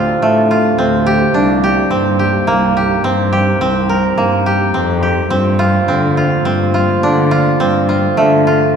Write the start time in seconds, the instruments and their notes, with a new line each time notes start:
Already playing: cello D2, woodwind section C3 D4 F4, koto C4 D4 F4
0.22 cello A2, koto A3
0.51 koto F4
0.78 cello D2, koto C4
1.06 koto G4
1.34 cello C2, woodwind section A#3 D#4, koto D4
1.64 koto G4
1.91 cello G2, koto C4
2.19 koto G4
2.47 cello C2, koto A#3
2.77 koto G4
3.04 cello G2, koto C4
3.33 woodwind section C4, koto G4
3.61 cello C2, koto C4
3.89 koto A#4
4.18 cello G2, koto A#3
4.46 koto G4
4.74 cello F2, koto C4
5.03 koto G4
5.30 cello G2, woodwind section C3 A3 A#3 F4, koto C4
5.59 koto F4
5.87 cello D3, koto C4
6.17 koto F4
6.45 cello G2, koto C4
6.74 koto F4
7.03 cello D3, koto D4
7.31 koto F4
7.60 cello G2, koto C4
7.89 koto F4
8.17 cello D3, koto A3
8.47 koto F4